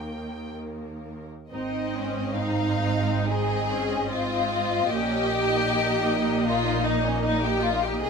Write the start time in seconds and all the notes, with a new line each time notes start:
Already playing: D#2 D#3 A#3 A#4 G5
1.50 G#1 G#2 C4 D#4 D#5
1.95 C#4
2.35 C4 D#4 F5
2.82 C4
3.27 C4 D#4 G#4 D#5
3.70 C#4
4.10 C4 F4
4.88 A#1 A#2 A#3 C#4 G4
5.31 D#4
6.47 F4
6.85 D#4
7.06 C#4
7.23 D#4
7.45 G4
7.63 F4
7.83 G4
8.00 C2 C3 D#4 G#4 D#5